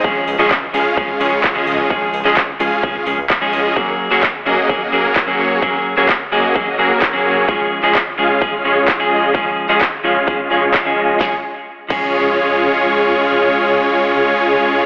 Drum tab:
CC |----------------|----------------|----------------|----------------|
HH |--o---o---o---o-|--o---o---o---o-|----------------|----------------|
CP |---xx-------x---|---xx-------x---|---xx-------x---|---xx-------x---|
SD |----------------|----------------|----------------|----------------|
BD |o---o---o---o---|o---o---o---o---|o---o---o---o---|o---o---o---o---|

CC |----------------|----------------|------x---------|----------------|
HH |----------------|----------------|----------------|----------------|
CP |---xx-------x---|---xx-------x---|----------------|----------------|
SD |----------------|----------------|o---------------|----------------|
BD |o---o---o---o---|o---o---o---o---|o-----o---------|----------------|